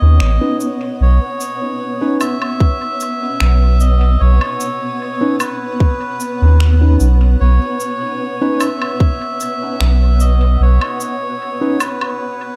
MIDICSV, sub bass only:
0, 0, Header, 1, 2, 480
1, 0, Start_track
1, 0, Key_signature, 5, "major"
1, 0, Tempo, 800000
1, 602, Time_signature, 4, 2, 24, 8
1, 7536, End_track
2, 0, Start_track
2, 0, Title_t, "Sub bass"
2, 0, Program_c, 0, 38
2, 10, Note_on_c, 0, 39, 94
2, 120, Note_off_c, 0, 39, 0
2, 124, Note_on_c, 0, 33, 82
2, 234, Note_off_c, 0, 33, 0
2, 603, Note_on_c, 0, 35, 96
2, 714, Note_off_c, 0, 35, 0
2, 2045, Note_on_c, 0, 35, 84
2, 2502, Note_off_c, 0, 35, 0
2, 2526, Note_on_c, 0, 35, 94
2, 2635, Note_off_c, 0, 35, 0
2, 3851, Note_on_c, 0, 39, 88
2, 4181, Note_off_c, 0, 39, 0
2, 4202, Note_on_c, 0, 35, 98
2, 4415, Note_off_c, 0, 35, 0
2, 4445, Note_on_c, 0, 35, 92
2, 4555, Note_off_c, 0, 35, 0
2, 5883, Note_on_c, 0, 35, 80
2, 6341, Note_off_c, 0, 35, 0
2, 6360, Note_on_c, 0, 35, 92
2, 6472, Note_off_c, 0, 35, 0
2, 7536, End_track
0, 0, End_of_file